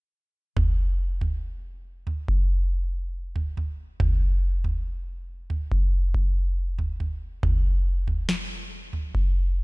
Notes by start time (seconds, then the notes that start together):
0.57 kick, floor tom
1.21 floor tom
2.07 floor tom
2.28 kick
3.36 floor tom
3.57 floor tom
4.00 kick, floor tom
4.64 floor tom
5.50 floor tom
5.72 kick
6.15 kick
6.79 floor tom
7.00 floor tom
7.43 kick, floor tom
8.08 floor tom
8.29 snare
8.93 floor tom
9.15 kick